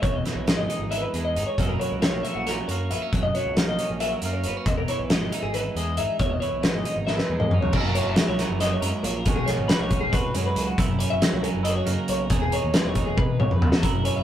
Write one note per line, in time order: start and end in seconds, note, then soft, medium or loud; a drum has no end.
0.00 0.20 E1 loud
0.00 1.57 E2 medium
0.00 0.25 E3 medium
0.00 0.13 C#5 medium
0.00 kick loud
0.00 closed hi-hat medium
0.13 0.24 D#5 medium
0.24 0.91 E3 medium
0.24 0.46 C#5 medium
0.24 snare soft
0.24 closed hi-hat medium
0.35 0.57 B1 medium
0.46 1.13 G#3 medium
0.46 0.57 B4 medium
0.46 snare loud
0.46 closed hi-hat medium
0.56 0.65 G#1 medium
0.56 0.79 D#5 medium
0.69 1.35 D#4 medium
0.69 closed hi-hat medium
0.79 1.05 G#1 medium
0.91 1.58 E3 medium
0.91 1.02 E5 medium
0.91 closed hi-hat medium
1.02 1.24 B4 medium
1.13 1.37 E2 medium
1.13 1.56 G#3 medium
1.13 closed hi-hat medium
1.25 1.46 D#5 medium
1.35 1.44 G#1 medium
1.35 1.55 D#4 medium
1.35 closed hi-hat medium
1.47 1.58 C#5 medium
1.58 1.75 F#1 medium
1.58 3.09 F#2 medium
1.58 1.80 F#3 soft
1.58 2.02 A#3 soft
1.58 2.27 C#4 medium
1.58 5.11 E4 medium
1.58 1.68 D#5 medium
1.58 kick medium
1.58 closed hi-hat medium
1.69 1.79 A#4 medium
1.80 2.46 F#3 medium
1.80 1.90 C#5 medium
1.80 closed hi-hat soft
1.91 2.12 C#2 medium
1.91 2.01 A#4 medium
2.02 2.68 A#3 soft
2.02 2.23 C#5 medium
2.02 snare loud
2.02 closed hi-hat medium
2.12 2.21 A#1 medium
2.23 2.34 E5 medium
2.23 closed hi-hat medium
2.28 2.91 C#4 medium
2.35 2.60 A#1 medium
2.35 2.45 F#4 medium
2.47 3.10 F#3 medium
2.47 2.68 A#4 medium
2.47 snare soft
2.47 closed hi-hat medium
2.68 2.92 F#2 medium
2.68 3.10 A#3 medium
2.68 2.91 C#5 medium
2.68 closed hi-hat medium
2.90 2.98 A#1 medium
2.90 3.02 B3 medium
2.90 3.12 E5 medium
2.90 closed hi-hat medium
3.02 3.12 C#4 soft
3.12 3.29 F#1 medium
3.12 4.64 F#2 medium
3.12 3.23 C#5 medium
3.12 kick medium
3.12 closed hi-hat medium
3.23 3.34 D#5 medium
3.35 4.01 F#3 medium
3.35 3.57 C#5 medium
3.35 closed hi-hat medium
3.45 3.68 C#2 medium
3.57 4.23 A#3 medium
3.57 3.67 A#4 medium
3.57 snare loud
3.57 closed hi-hat medium
3.68 3.76 A#1 medium
3.68 3.89 D#5 medium
3.79 4.45 C#4 medium
3.79 closed hi-hat medium
3.90 4.15 A#1 medium
4.00 4.64 F#3 medium
4.00 4.11 E5 medium
4.00 closed hi-hat medium
4.11 4.33 A#4 medium
4.22 4.45 F#2 medium
4.22 4.65 A#3 medium
4.22 closed hi-hat medium
4.33 4.56 C#5 medium
4.44 4.52 F#1 medium
4.44 closed hi-hat medium
4.48 4.57 B3 medium
4.56 4.67 C#4 soft
4.56 4.66 B4 medium
4.66 4.83 E1 medium
4.66 6.20 E2 medium
4.66 4.77 D#5 medium
4.66 kick loud
4.66 closed hi-hat medium
4.77 4.88 A#4 medium
4.88 5.54 E3 medium
4.88 4.99 C#5 medium
4.88 closed hi-hat medium
4.99 5.21 B1 medium
4.99 5.10 B4 medium
5.10 5.76 G#3 medium
5.10 5.32 D#5 medium
5.10 snare loud
5.10 closed hi-hat medium
5.21 5.29 G#1 medium
5.32 5.98 D#4 medium
5.32 5.43 E5 medium
5.32 closed hi-hat medium
5.42 5.68 G#1 medium
5.42 5.53 G#4 medium
5.54 6.42 E3 medium
5.54 5.76 B4 medium
5.54 closed hi-hat medium
5.75 5.99 E2 medium
5.75 6.17 G#3 medium
5.75 5.97 D#5 medium
5.75 closed hi-hat medium
5.97 6.06 G#1 medium
5.97 6.17 D#4 medium
5.97 6.19 E5 medium
5.97 closed hi-hat medium
6.19 6.37 E1 medium
6.19 7.73 E2 medium
6.19 6.30 C#5 medium
6.19 kick loud
6.19 closed hi-hat medium
6.30 6.40 D#5 medium
6.40 7.07 E3 medium
6.40 6.62 C#5 medium
6.40 closed hi-hat soft
6.52 6.74 B1 medium
6.63 7.29 G#3 soft
6.63 6.74 B4 medium
6.63 snare medium
6.63 closed hi-hat medium
6.74 6.82 G#1 medium
6.74 6.96 D#5 medium
6.85 7.51 D#4 medium
6.85 closed hi-hat medium
6.96 7.21 G#1 medium
7.07 7.70 E3 medium
7.07 7.18 E5 medium
7.07 snare soft
7.18 7.39 B4 medium
7.18 snare soft
7.29 7.52 E2 medium
7.29 7.71 G#3 medium
7.40 7.60 D#5 medium
7.40 mid tom medium
7.51 7.59 G#1 medium
7.51 7.71 D#4 medium
7.51 mid tom medium
7.61 7.72 C#5 medium
7.61 floor tom medium
7.72 7.98 F#1 loud
7.72 8.60 F#2 medium
7.72 8.17 F#3 medium
7.72 9.24 A#3 medium
7.72 7.94 A#4 medium
7.72 kick loud
7.72 crash loud
7.77 7.96 C#4 medium
7.77 8.17 E4 medium
7.95 8.40 C#4 medium
7.95 8.06 C#5 medium
7.95 closed hi-hat medium
8.05 8.14 F#1 medium
8.05 8.27 E5 medium
8.16 9.26 F#3 medium
8.16 9.26 E4 soft
8.16 snare loud
8.16 closed hi-hat medium
8.28 8.44 C#2 medium
8.28 8.39 C#5 medium
8.39 9.28 C#4 medium
8.39 8.60 A#4 medium
8.39 snare soft
8.39 closed hi-hat medium
8.50 8.75 F#1 medium
8.60 8.82 F#2 medium
8.60 8.71 D#5 medium
8.60 snare soft
8.60 closed hi-hat medium
8.72 8.81 C#5 medium
8.81 8.90 F#2 medium
8.81 9.04 G#2 medium
8.81 9.03 A#4 medium
8.81 closed hi-hat medium
9.03 9.26 A#1 medium
9.03 9.25 A#2 medium
9.03 9.14 C#5 medium
9.03 closed hi-hat medium
9.14 9.36 A#4 medium
9.26 9.51 B1 medium
9.26 9.69 B2 medium
9.26 9.69 D#3 medium
9.26 10.34 G#3 medium
9.26 9.49 C#4 medium
9.26 9.71 F#4 medium
9.26 kick loud
9.26 closed hi-hat medium
9.36 9.47 G#4 medium
9.46 9.92 C#4 medium
9.46 9.68 C#5 medium
9.46 snare soft
9.46 closed hi-hat medium
9.58 9.66 G#1 medium
9.68 10.76 D#3 medium
9.68 10.12 F#4 medium
9.68 9.79 B4 medium
9.68 snare loud
9.68 closed hi-hat medium
9.79 9.96 B1 medium
9.79 10.01 C#5 medium
9.91 10.76 C#4 medium
9.91 kick medium
9.91 closed hi-hat medium
10.01 10.19 B1 medium
10.01 10.12 G#4 medium
10.12 10.76 F#4 medium
10.12 10.34 B4 medium
10.12 kick medium
10.12 closed hi-hat medium
10.34 10.51 F#2 medium
10.34 10.76 F#2 medium
10.34 10.76 G#3 medium
10.34 10.45 C#5 medium
10.34 closed hi-hat medium
10.46 10.67 B4 medium
10.56 10.73 C#2 medium
10.56 closed hi-hat medium
10.67 10.78 F#4 medium
10.78 11.03 F#1 loud
10.78 12.28 F#2 medium
10.78 11.22 E4 medium
10.78 10.99 A#4 medium
10.78 kick loud
10.78 closed hi-hat medium
10.99 11.43 C#4 medium
10.99 11.10 C#5 medium
10.99 closed hi-hat medium
11.10 11.19 F#1 medium
11.10 11.33 E5 medium
11.21 12.28 F#3 medium
11.21 11.62 E4 medium
11.21 snare loud
11.21 closed hi-hat loud
11.32 11.49 C#2 medium
11.32 11.43 C#5 medium
11.43 12.28 C#4 medium
11.43 11.65 A#4 medium
11.43 closed hi-hat medium
11.54 11.80 F#1 medium
11.63 11.75 E4 medium
11.63 11.75 D#5 medium
11.63 closed hi-hat medium
11.75 12.30 F#4 soft
11.75 11.87 C#5 medium
11.85 11.95 F#2 medium
11.85 12.27 C#3 medium
11.85 12.27 A#3 medium
11.85 12.09 A#4 medium
11.85 closed hi-hat medium
12.08 12.32 B1 medium
12.08 12.20 C#5 medium
12.08 closed hi-hat medium
12.20 12.41 A#4 medium
12.30 12.56 E1 medium
12.30 13.60 E2 medium
12.30 12.74 G#4 medium
12.30 kick loud
12.30 closed hi-hat medium
12.42 12.52 G#4 medium
12.52 12.95 D#4 medium
12.52 12.74 C#5 medium
12.52 closed hi-hat medium
12.63 12.71 D#2 medium
12.74 13.80 E3 medium
12.74 13.81 G#4 medium
12.74 12.85 B4 medium
12.74 snare loud
12.74 closed hi-hat medium
12.85 13.02 E1 medium
12.85 13.07 C#5 medium
12.95 13.81 D#4 medium
12.95 kick medium
12.95 closed hi-hat medium
13.06 13.24 E1 medium
13.06 13.17 G#4 medium
13.17 13.39 B4 medium
13.17 kick loud
13.17 high tom medium
13.40 13.56 B1 medium
13.40 13.50 C#5 medium
13.40 mid tom medium
13.50 13.72 B4 medium
13.50 mid tom medium
13.61 13.83 E2 medium
13.61 13.78 E2 medium
13.61 floor tom loud
13.72 13.83 F#4 medium
13.72 snare medium
13.83 14.09 F#1 loud
13.83 14.23 F#2 medium
13.83 14.23 E4 medium
13.83 14.04 A#4 medium
13.83 kick loud
13.83 closed hi-hat medium
14.05 14.23 C#4 medium
14.05 14.16 C#5 medium
14.05 closed hi-hat medium
14.16 14.23 F#1 medium
14.16 14.23 E5 medium